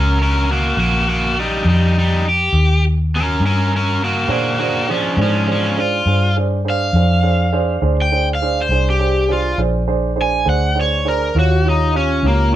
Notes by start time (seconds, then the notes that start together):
Already playing: C#2 C#4 A#4
0.22 C#4 A#4
0.51 A#3 F#4
0.77 A#1 A#3 F#4
1.09 A#3 F#4
1.39 G3 D#4
1.65 F2
1.69 G3 D#4
1.98 G3 D#4
2.29 G4
2.53 D#2
3.15 C#4 A#4
3.40 G2
3.46 C#4 A#4
3.76 C#4 A#4
4.04 A#3 F#4
4.28 A#2 A#3 D4 G#4 C5
4.32 F#4
4.59 A#3 D4 F#4 G#4 C5
4.88 F3 C#4 D4 G#4 C5
5.17 G#2 D4 G#4 C5
5.22 F3 C#4
5.47 F3 D4 G#4 C5
5.52 C#4
5.78 D4 F4 G#4 C5
6.06 G2 D4 G#4 C5
6.36 D4 G#4 C5
6.65 D4 G#4 C5
6.70 F5
6.93 F2 D4 G#4 C5
7.23 D4 G#4 C5
7.52 D4 G#4 C5
7.82 D2 D4 G#4 C5
8.02 G5
8.11 D4 G#4 C5
8.35 F5
8.42 D4 G#4 C5
8.62 C5
8.69 C2 D4 G#4 C5
8.90 G4
8.99 D4 G#4 C5
9.28 D4 G#4 C5
9.32 F4
9.58 A#1 D4 G#4 C5
9.88 D4 G#4 C5
10.16 D4 G#4 C5
10.22 G#5
10.45 D2 D4 G#4 C5
10.49 F#5
10.75 D4 G#4 C5
10.81 C#5
11.05 D4 G#4 A#4 C5
11.35 D#2 F4 G4 C#5
11.39 F#4
11.65 F4 G4 C#5
11.69 D#4
11.93 F4 G4 C#5
11.97 C#4
12.23 C#2 F4 G4 C#5
12.28 A#3
12.52 F4 G4 C#5